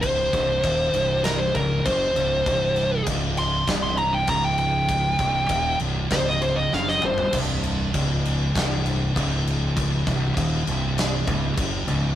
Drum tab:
CC |x-x-x-x-x-x-x-x-|x-x-x-x-x-x-x-x-|x-x-x-x-x-x-----|x-x-x-x-x-x-x-x-|
SD |--o-----o-------|--o-----o-------|--o-----o---oo--|--------o-------|
T2 |----------------|----------------|--------------o-|----------------|
FT |----------------|----------------|---------------o|----------------|
BD |o-o-o-----o-o---|o---o---o---o---|o-o-o---o-------|o---o---o---o---|

CC |x-x-x-x-x-x-x-x-|
SD |--o-----o-------|
T2 |----------------|
FT |----------------|
BD |o-o-o-----o-o---|